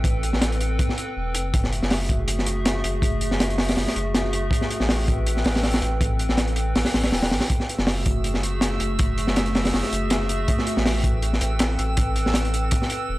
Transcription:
Already playing: A1
0.04 C4 A4 B4 G5, kick, closed hi-hat
0.23 closed hi-hat
0.33 A1, snare
0.41 snare, closed hi-hat
0.52 closed hi-hat
0.61 closed hi-hat
0.79 kick, closed hi-hat
0.89 snare
0.98 closed hi-hat
1.17 E1
1.35 F#1, closed hi-hat
1.54 A3 F#4 G#4 E5, kick, closed hi-hat
1.64 snare
1.73 closed hi-hat
1.82 F#1, snare
1.90 snare, open hi-hat
2.09 A3 F#4 G#4 E5, kick, closed hi-hat
2.28 closed hi-hat
2.39 snare
2.46 F#1, closed hi-hat
2.65 snare, closed hi-hat
2.84 F#1, closed hi-hat
3.02 A3 F#4 G#4 E5, kick, closed hi-hat
3.21 closed hi-hat
3.31 F#1, snare
3.40 snare, closed hi-hat
3.50 closed hi-hat
3.58 A3 F#4 G#4 E5, snare, open hi-hat
3.69 snare, open hi-hat
3.77 F#1, snare, open hi-hat
3.88 snare
3.96 F#1, closed hi-hat
4.15 snare, closed hi-hat
4.33 closed hi-hat
4.51 C4 A4 B4 G5, kick, closed hi-hat
4.61 snare
4.70 closed hi-hat
4.80 A1, snare
4.89 snare, open hi-hat
5.08 C4 A4 B4 G5, kick, closed hi-hat
5.27 closed hi-hat
5.37 snare
5.44 A1, snare, open hi-hat
5.55 snare, open hi-hat
5.63 snare, open hi-hat
5.74 snare, open hi-hat
5.82 A1, closed hi-hat
6.01 C4 A4 B4 G5, kick, closed hi-hat
6.19 closed hi-hat
6.29 A1, snare
6.38 snare, closed hi-hat
6.48 closed hi-hat
6.56 closed hi-hat
6.75 A1, snare, open hi-hat
6.85 snare, open hi-hat
6.93 A1, snare, open hi-hat
7.03 snare, open hi-hat
7.12 E1, snare, open hi-hat
7.22 E1, snare, open hi-hat
7.31 A1, snare, open hi-hat
7.40 snare, open hi-hat
7.50 A3 F#4 G#4 E5 E6, kick, closed hi-hat
7.60 snare
7.69 closed hi-hat
7.78 F#1, snare
7.87 snare, open hi-hat
8.06 A3 F#4 G#4 E5, kick, closed hi-hat
8.24 closed hi-hat
8.34 snare
8.43 F#1, closed hi-hat
8.61 snare, closed hi-hat
8.80 F#1, closed hi-hat
8.99 A3 F#4 G#4 E5, kick, closed hi-hat
9.18 closed hi-hat
9.27 F#1, snare
9.36 snare, closed hi-hat
9.46 closed hi-hat
9.55 A3 F#4 G#4 E5, snare, open hi-hat
9.65 snare, open hi-hat
9.73 F#1, snare, open hi-hat
9.83 snare
9.92 F#1, closed hi-hat
10.10 snare, closed hi-hat
10.29 closed hi-hat
10.48 C4 A4 B4 G5, kick, closed hi-hat
10.59 snare
10.67 closed hi-hat
10.77 A1, snare
10.86 snare, open hi-hat
11.04 C4 A4 B4 G5, kick, closed hi-hat
11.22 closed hi-hat
11.33 snare
11.41 A1, closed hi-hat
11.59 snare, closed hi-hat
11.78 A1, closed hi-hat
11.97 C4 A4 B4 G5, kick, closed hi-hat
12.16 closed hi-hat
12.26 A1, snare
12.34 snare, closed hi-hat
12.45 closed hi-hat
12.53 C4 A4 B4 G5, closed hi-hat
12.71 kick, closed hi-hat
12.82 snare
12.90 closed hi-hat
13.09 E1

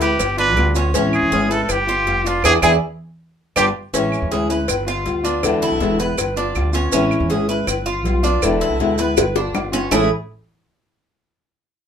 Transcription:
Already playing: D2
0.00 G#3 B3 E4 G4 B4, cowbell, maracas
0.19 G1, muted nylon-string guitar stroke, cowbell, claves, maracas
0.37 B3 D4 F4 B4, maracas
0.56 D2 G3 B3 F4, cowbell, claves, maracas
0.75 B3 C#4 F4, cowbell, maracas
0.93 A1 E3 G#3 C#4 E4, cowbell, maracas
1.13 G#4, claves, maracas
1.22 E2
1.31 G#1 E3 G#3 C#4 E4 G#4, cowbell, maracas
1.49 G#3 C#4 E4 A4 B4, maracas
1.63 A4
1.68 G1 G4, muted nylon-string guitar stroke, cowbell, claves, maracas
1.87 B3 F4, maracas
2.06 F1 G3 B3 F4, cowbell, maracas
2.25 B3 D4 F4, maracas
2.44 E2 B3 D4 E4 G#4, cowbell, claves, maracas
2.62 E2 B3 D4 E4 G#4, cowbell, claves, maracas
3.56 G1 G3 B3 D4 F4 G4, cowbell, claves, maracas
3.93 A1 E3 G#3 C#4 E4, cowbell, maracas
4.12 claves, maracas
4.22 E2
4.31 D2 E3 G#3 C#4 E4 G#4, cowbell, maracas
4.49 G#3 C#4 E4 B4, maracas
4.68 G1, muted nylon-string guitar stroke, cowbell, claves, maracas
4.86 B3 F4, maracas
5.05 D2 G3 B3 F4, cowbell, maracas
5.24 B3 D4 F4, maracas
5.43 E1 B2 D3 G#3 B3 E4, cowbell, claves, maracas
5.62 E4, cowbell, maracas
5.71 B1
5.80 E1 B2 D3 G#3 B3 E4, cowbell, maracas
5.99 G#3 B3 E4 B4, cowbell, maracas
6.17 G1, muted nylon-string guitar stroke, cowbell, claves, maracas
6.36 B3 D4 F4, maracas
6.55 D2 G3 B3 F4, cowbell, claves, maracas
6.73 B3 C#4 F4, cowbell, maracas
6.92 A1 E3 G#3 C#4 E4, cowbell, maracas
7.11 claves, maracas
7.20 E2
7.29 G#1 E3 G#3 C#4 E4 G#4, cowbell, maracas
7.49 G#3 C#4 E4 B4, maracas
7.67 G1, muted nylon-string guitar stroke, cowbell, claves, maracas
7.86 B3 F4, maracas
8.04 B1 G3 B3 F4, cowbell, maracas
8.23 B3 D4 F4, maracas
8.42 E1 B2 D3 G#3 B3 E4, cowbell, claves, maracas
8.61 E4, cowbell, maracas
8.70 B1
8.80 D2 B2 D3 G#3 B3 E4, cowbell, maracas
8.98 G#3 B3 E4 B4, cowbell, maracas
9.17 G1, muted nylon-string guitar stroke, cowbell, high bongo, claves, maracas
9.36 B3 D4 F4, high bongo, maracas
9.53 G1 G3 B3 F4, cowbell, low bongo, claves, maracas
9.72 B3 C#4 F4, cowbell, low bongo, maracas
9.91 A1 A2 E3 G#3 A3 C#4 E4 G#4, low bongo, claves, maracas

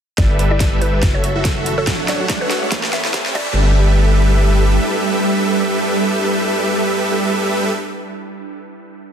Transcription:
0.18 G1 G3 E4 G4 A4 B4 D5 E5, kick, snare, closed hi-hat, riser
0.39 G3 G4 A4 B4 E5, closed hi-hat
0.51 E4 D5
0.60 D5, kick, snare, closed hi-hat
0.72 G3 G4 A4 B4 E5
0.81 E4 B4, closed hi-hat
0.93 B4
1.02 F#1 C#4 E4 F#4 A4 E5, kick, snare, closed hi-hat
1.14 C#5
1.24 C#5, closed hi-hat
1.35 E4 F#4 A4 E5
1.45 A4, kick, snare, closed hi-hat
1.57 F#4 A4 E5
1.66 E4, closed hi-hat
1.78 F#4 A4 C#5 E5
1.87 D1 A3 D4 F#4 A4 C#5 E5 F#5, kick, snare, closed hi-hat
2.08 D4 A4 C#5 D5 E5 F#5, snare, closed hi-hat
2.20 F#4
2.29 D5, kick, snare, closed hi-hat
2.41 D4 A4 B4 C#5 E5 F#5
2.50 F#4, snare, closed hi-hat
2.62 C#5
2.72 A1 A3 E4 G4 B4 C#5 A5, kick, snare, closed hi-hat
2.83 snare
2.93 B4 E5, snare, closed hi-hat
3.05 A3 E4 G4 B4 C#5 A5, snare
3.14 A4, kick, snare, closed hi-hat
3.26 A3 G4 B4 C#5 A5, snare
3.35 G1 G3 D4 E4 G4 A4 B4 D5 E5, kick, crash

